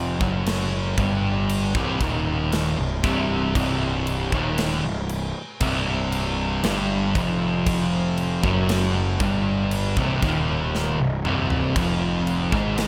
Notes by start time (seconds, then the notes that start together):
Already playing: F1 F2 F3
0.21 F#1 F#2 F#3, kick
0.46 snare, crash
0.98 G1 G2 G3, kick, crash
1.49 crash
1.75 C1 C2 C3, kick
2.01 D#1 D#2 D#3, kick, crash
2.52 snare, crash
2.78 C1 C2
3.04 C1 C2 C3, kick, snare, crash
3.55 C1 C2 C3, kick, crash
4.07 crash
4.32 D#1 D#2 D#3, kick
4.58 snare, crash
4.84 C1 C2
5.09 crash
5.60 C1 C2 C3, kick, crash
6.12 crash
6.64 G1 G2 G3, snare, crash
7.15 F1 F2 F3, kick, crash
7.67 kick, crash
8.18 crash
8.43 F#1 F#2 F#3, kick
8.69 snare, crash
9.20 G1 G2 G3, kick, crash
9.71 crash
9.97 C1 C2 C3, kick
10.22 D#1 D#2 D#3, kick, crash
10.75 snare
10.99 C1 C2
11.24 C1 C2 C3, mid tom
11.50 floor tom
11.76 F1 F2 F3, kick, crash
12.27 crash
12.52 G#1 G#2 G#3, kick
12.78 snare, crash